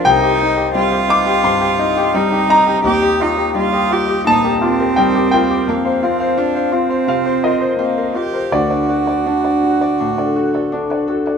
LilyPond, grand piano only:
\new Staff \with { instrumentName = "Grand piano" } { \time 4/4 \key d \phrygian \tempo 4 = 85 << { g''4. d'''8 c'''4. bes''8~ | bes''2 a''4 g''8 g''8~ | g''2 f''8 ees''4. | d''2.~ d''8 r8 | } \\ { c,16 g'16 ees'16 g'16 g16 g'16 ees'16 g'16 g,16 g'16 ees'16 g'16 g16 g'16 ees'16 g'16 | ees,16 g'16 f'16 g'16 g16 g'16 f'16 g'16 bes,16 g'16 f'16 g'16 g16 g'16 f'16 g'16 | f,16 c''16 f'16 c''16 c'16 c''16 f'16 c''16 c16 c''16 f'16 c''16 c'16 c''16 f'16 c''16 | d,16 d''16 fis'16 d''16 d'16 d''16 fis'16 d''16 a,16 d''16 fis'16 d''16 d'16 d''16 fis'16 d''16 | } >> }